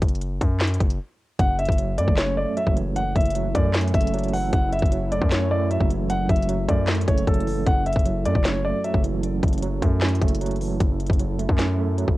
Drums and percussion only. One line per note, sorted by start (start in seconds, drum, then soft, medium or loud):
0.02 kick medium
0.02 closed hi-hat medium
0.08 closed hi-hat medium
0.15 closed hi-hat medium
0.21 closed hi-hat medium
0.41 kick medium
0.41 closed hi-hat medium
0.60 snare loud
0.60 clap medium
0.60 closed hi-hat soft
0.67 closed hi-hat medium
0.74 closed hi-hat medium
0.80 kick loud
0.80 closed hi-hat medium
0.90 closed hi-hat medium
1.39 kick loud
1.39 closed hi-hat medium
1.59 closed hi-hat medium
1.65 kick loud
1.65 closed hi-hat medium
1.72 closed hi-hat medium
1.78 closed hi-hat medium
1.98 closed hi-hat medium
2.08 kick medium
2.17 snare loud
2.17 clap medium
2.17 closed hi-hat medium
2.57 closed hi-hat medium
2.67 kick medium
2.77 closed hi-hat medium
2.96 closed hi-hat medium
3.16 kick medium
3.16 closed hi-hat medium
3.21 closed hi-hat medium
3.25 closed hi-hat medium
3.30 closed hi-hat medium
3.35 closed hi-hat medium
3.55 kick loud
3.55 closed hi-hat medium
3.74 snare loud
3.74 clap medium
3.74 closed hi-hat soft
3.81 closed hi-hat medium
3.88 closed hi-hat medium
3.94 kick loud
3.94 closed hi-hat medium
4.01 closed hi-hat medium
4.07 closed hi-hat medium
4.14 closed hi-hat medium
4.19 closed hi-hat medium
4.23 closed hi-hat soft
4.28 closed hi-hat soft
4.34 open hi-hat medium
4.53 kick loud
4.53 closed hi-hat medium
4.72 closed hi-hat medium
4.79 kick medium
4.79 closed hi-hat medium
4.86 closed hi-hat medium
4.92 closed hi-hat medium
5.12 closed hi-hat medium
5.21 kick medium
5.31 snare loud
5.31 clap medium
5.31 closed hi-hat medium
5.71 closed hi-hat medium
5.80 kick medium
5.90 closed hi-hat medium
6.10 closed hi-hat medium
6.29 kick loud
6.29 closed hi-hat medium
6.36 closed hi-hat medium
6.42 closed hi-hat medium
6.49 closed hi-hat medium
6.69 kick loud
6.69 closed hi-hat medium
6.87 snare loud
6.87 clap medium
6.87 closed hi-hat soft
6.95 closed hi-hat medium
7.01 closed hi-hat medium
7.08 kick loud
7.08 closed hi-hat medium
7.18 closed hi-hat medium
7.27 kick medium
7.27 closed hi-hat medium
7.34 closed hi-hat medium
7.41 closed hi-hat medium
7.47 open hi-hat medium
7.67 kick loud
7.67 closed hi-hat medium
7.86 closed hi-hat medium
7.93 kick medium
7.93 closed hi-hat medium
7.99 closed hi-hat medium
8.06 closed hi-hat medium
8.26 closed hi-hat medium
8.35 kick medium
8.44 snare loud
8.44 clap medium
8.44 closed hi-hat medium
8.84 closed hi-hat medium
8.94 kick medium
9.04 closed hi-hat medium
9.23 closed hi-hat medium
9.43 kick loud
9.43 closed hi-hat medium
9.48 closed hi-hat medium
9.53 closed hi-hat medium
9.58 closed hi-hat medium
9.63 closed hi-hat medium
9.82 kick loud
9.82 closed hi-hat medium
10.01 snare loud
10.01 clap medium
10.01 closed hi-hat soft
10.08 closed hi-hat medium
10.15 closed hi-hat medium
10.21 kick loud
10.21 closed hi-hat medium
10.28 closed hi-hat medium
10.35 closed hi-hat medium
10.41 closed hi-hat medium
10.46 closed hi-hat medium
10.51 closed hi-hat soft
10.56 closed hi-hat soft
10.61 open hi-hat medium
10.80 kick loud
10.80 closed hi-hat medium
11.00 closed hi-hat medium
11.06 kick loud
11.06 closed hi-hat medium
11.13 closed hi-hat medium
11.19 closed hi-hat medium
11.39 closed hi-hat medium
11.49 kick medium
11.58 snare loud
11.58 clap medium
11.58 closed hi-hat medium
11.98 closed hi-hat medium
12.08 kick medium